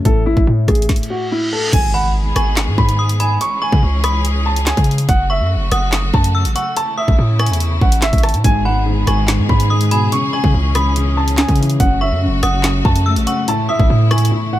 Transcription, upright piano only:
0.05 0.21 A4 medium
0.26 0.42 E4 medium
0.68 0.84 G#4 medium
1.10 1.26 F#4 medium
1.32 1.47 E4 medium
1.53 1.68 A4 medium
1.73 1.89 G#5 loud
1.94 2.10 F#5 medium
2.35 2.52 G#5 medium
2.78 3.17 B5 medium
3.20 3.36 G#5 medium
3.41 3.57 C#6 loud
3.62 3.78 G#5 medium
4.04 4.20 B5 medium
4.46 4.62 A5 medium
4.67 4.83 G#5 medium
5.09 5.25 F#5 loud
5.30 5.46 E5 medium
5.72 5.88 F#5 medium
6.14 6.53 A5 medium
6.55 6.71 F#5 medium
6.77 6.93 A5 loud
6.98 7.13 E5 medium
7.40 7.55 G#5 medium
7.82 7.97 F#5 medium
8.03 8.19 E5 medium
8.24 8.39 A5 medium
8.44 8.60 G#5 medium
8.65 8.81 F#5 medium
9.06 9.23 G#5 medium
9.49 9.89 B5 medium
9.91 10.07 G#5 medium
10.12 10.28 C#6 loud
10.33 10.49 G#5 medium
10.75 10.91 B5 medium
11.17 11.33 A5 medium
11.38 11.54 G#5 medium
11.80 11.96 F#5 medium
12.01 12.17 E5 medium
12.43 12.59 F#5 medium
12.85 13.24 A5 medium
13.27 13.43 F#5 medium
13.48 13.64 A5 medium
13.69 13.85 E5 medium
14.11 14.27 G#5 medium
14.53 14.59 F#5 medium

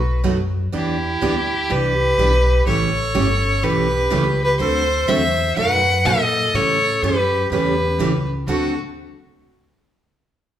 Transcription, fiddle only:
0.00 0.20 B4 medium
0.75 1.73 G4 medium
1.72 2.67 B4 loud
2.67 3.65 C#5 medium
3.64 4.44 B4 loud
4.44 4.59 B4 medium
4.60 5.10 C5 loud
5.09 5.56 E5 loud
5.56 6.08 F#5 loud
6.06 6.56 D#5 loud
6.55 7.04 C#5 loud
7.03 7.50 B4 medium
7.51 8.27 B4 medium
8.48 8.77 F#4 medium

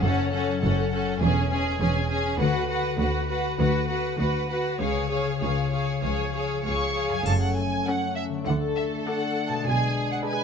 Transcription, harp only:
0.00 1.24 F#2 medium
0.00 0.91 C#4 soft
0.32 1.24 F#3 soft
0.62 1.24 A4 soft
0.92 2.09 C#4 soft
1.21 2.42 E2 medium
1.51 2.42 G#3 soft
1.80 2.42 G#4 soft
2.10 2.42 C#4 soft
2.40 3.58 D3 medium
2.70 3.88 B3 soft
3.00 4.18 F#4 soft
3.30 4.49 B4 soft
3.59 4.83 D3 soft
3.89 4.83 B3 soft
4.19 4.83 F#4 soft
4.50 4.83 B4 soft
4.80 7.28 C#3 soft
5.12 6.33 C#4 soft
5.43 6.64 F4 soft
5.74 6.94 G#4 soft
6.04 7.29 F3 soft
6.35 7.16 C#4 soft
6.65 7.29 F4 soft
6.96 7.28 G#4 soft
7.08 8.40 F#2 soft
7.13 9.62 F#3 soft
7.17 8.44 C#4 soft
7.22 8.41 A4 soft
8.29 9.60 D3 soft
8.33 9.63 A3 soft
8.38 9.57 D4 soft
8.42 9.67 A4 soft
9.49 10.44 B2 soft
9.53 10.44 G#3 soft
9.58 10.44 D4 soft
9.62 10.44 D5 soft

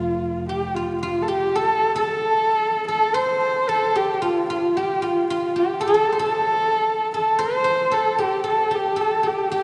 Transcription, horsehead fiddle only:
0.00 0.48 F4 medium
0.49 0.76 G4 medium
0.75 1.01 F4 medium
1.02 1.24 F4 medium
1.23 1.30 A4 medium
1.28 1.57 G4 medium
1.56 1.96 A4 loud
1.97 2.86 A4 loud
2.87 3.17 A4 loud
3.15 3.70 C5 loud
3.69 3.98 A4 loud
3.96 4.22 G4 medium
4.24 4.48 F4 medium
4.49 4.78 F4 medium
4.77 5.05 G4 medium
5.04 5.29 F4 medium
5.30 5.60 F4 medium
5.59 5.82 G4 medium
5.83 6.19 A4 loud
6.23 7.11 A4 loud
7.15 7.41 A4 medium
7.40 7.95 C5 loud
7.94 8.21 A4 medium
8.20 8.46 G4 medium
8.47 8.76 A4 medium
8.75 9.03 G4 medium
9.01 9.29 A4 medium
9.27 9.52 G4 medium
9.53 9.63 G4 medium

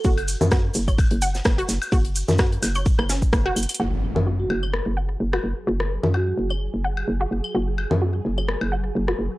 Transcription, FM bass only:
0.05 0.36 F#1 loud
0.41 0.71 F#2 loud
0.75 1.06 F#1 medium
1.11 1.41 F#1 medium
1.45 1.64 F#1 medium
1.69 1.78 F#1 medium
1.92 2.23 F#1 loud
2.28 2.58 F#2 loud
2.62 2.94 F#1 medium
2.99 3.29 F#1 medium
3.33 3.51 F#1 medium
3.56 3.66 F#1 medium
3.80 4.11 F#1 medium
4.16 4.46 F#2 medium
4.50 4.81 F#1 medium
4.86 5.16 F#1 medium
5.20 5.39 F#1 medium
5.44 5.53 F#1 medium
5.67 5.98 F#1 medium
6.03 6.33 F#2 loud
6.38 6.69 F#1 medium
6.74 7.04 F#1 medium
7.08 7.26 F#1 medium
7.31 7.41 F#1 medium
7.55 7.86 F#1 medium
7.91 8.21 F#2 loud
8.25 8.56 F#1 medium
8.61 8.91 F#1 medium
8.95 9.14 F#1 medium
9.19 9.29 F#1 medium

